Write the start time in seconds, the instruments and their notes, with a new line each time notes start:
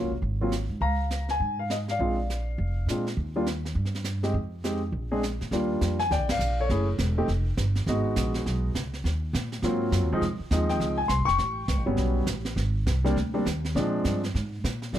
0.02 upright bass C#2
0.11 upright bass A#1
0.22 upright bass G#1, brush sweep, kick
0.41 grand piano F#3 A#3 C4 F4
0.52 snare, hi-hat pedal
0.69 upright bass G#2
0.81 upright bass C#2, grand piano F5 A#5, brush sweep, kick
1.11 snare, hi-hat pedal
1.29 grand piano G#5, snare
1.40 upright bass G#2, brush sweep, kick
1.59 grand piano F5
1.70 grand piano D#5, snare, hi-hat pedal
1.88 grand piano D5 F5, snare
1.99 upright bass A#1, grand piano G#3 C4 D4 F4, brush sweep, kick
2.30 snare, hi-hat pedal
2.58 upright bass F1, brush sweep, kick
2.87 upright bass A#2, grand piano G#3 C4 D4 F4, snare, hi-hat pedal
3.07 snare
3.17 upright bass D#2, brush sweep, kick
3.36 grand piano G3 A#3 D4 F4
3.46 snare, hi-hat pedal
3.65 snare
3.75 upright bass G2, brush sweep, kick
3.85 snare
3.95 snare
4.04 snare, hi-hat pedal
4.23 grand piano G#3 C4 D#4 G4, snare
4.34 upright bass F2, brush sweep, kick
4.64 grand piano G#3 C4 D#4 G4, snare, hi-hat pedal
4.92 upright bass A#1, brush sweep, kick
5.11 grand piano G#3 C4 D4 G#4
5.23 snare, hi-hat pedal
5.41 upright bass A#2, snare
5.51 upright bass D#2, grand piano G3 A#3 D4 F4, brush sweep, kick, snare
5.81 upright bass F2, kick, snare, hi-hat pedal
5.99 grand piano G#5, snare
6.11 upright bass D2, grand piano D5 G5, brush sweep, kick, snare
6.19 upright bass A#1
6.29 upright bass G1, grand piano F5, snare, ride
6.39 upright bass A#1, hi-hat pedal
6.60 grand piano A4 C#5
6.69 upright bass F#1, grand piano A3 C#4 E4 G#4, brush sweep, kick, snare
6.98 upright bass E1, kick, snare, hi-hat pedal
7.18 grand piano A3 C4 D#4 G4
7.28 upright bass F1, brush sweep, kick, snare
7.57 upright bass G1, kick, snare, hi-hat pedal
7.75 snare
7.86 upright bass G#1, grand piano G#3 B3 D#4 F#4, brush sweep, kick, snare
8.16 upright bass A#1, kick, snare, hi-hat pedal
8.34 snare
8.46 upright bass B1, brush sweep, kick, snare
8.75 upright bass C#2, kick, snare, hi-hat pedal
8.94 snare
9.04 upright bass D#2, brush sweep, kick, snare
9.33 upright bass A#2, kick, snare, hi-hat pedal
9.52 snare
9.62 upright bass G#2, grand piano F#3 A#3 C4 F4, brush sweep, kick, snare
9.92 upright bass F#2, kick, snare, hi-hat pedal
10.03 upright bass D#2
10.12 upright bass C2, grand piano F3 G#3 C4 D#4
10.21 upright bass F2, brush sweep, kick, snare
10.39 muted upright bass stroke
10.51 upright bass D#2, grand piano F3 G#3 C4 D#4, kick, snare, hi-hat pedal
10.69 grand piano G5, snare
10.80 upright bass C#2, brush sweep, kick, snare
10.98 grand piano G#5
11.08 upright bass C2, grand piano C6, kick, snare, hi-hat pedal
11.19 upright bass G#1
11.25 upright bass F1, grand piano G5 C#6, snare
11.38 upright bass A1, brush sweep, kick, snare
11.68 upright bass C#2, kick, snare, hi-hat pedal
11.77 upright bass A1
11.86 upright bass G1, grand piano F#3 G3 B3 C#4
11.97 upright bass B1, brush sweep, kick, snare
12.26 upright bass A1, kick, snare, hi-hat pedal
12.45 snare
12.56 upright bass G#1, brush sweep, kick, snare
12.86 upright bass C2, kick, snare, hi-hat pedal
13.05 grand piano G3 A#3 C4 D4, snare
13.16 upright bass D2, brush sweep, kick, snare
13.34 grand piano G3 A#3 C4 D4
13.45 upright bass D#2, kick, snare, hi-hat pedal
13.65 snare
13.75 upright bass A#2, grand piano F3 G#3 C4 D4, brush sweep, kick, snare
14.04 upright bass G2, kick, snare, hi-hat pedal
14.24 snare
14.34 upright bass G#2, brush sweep, kick, snare
14.64 upright bass A#2, kick, snare, hi-hat pedal
14.82 snare
14.93 upright bass D#2, grand piano F3 G3 A#3 D4, brush sweep, kick, snare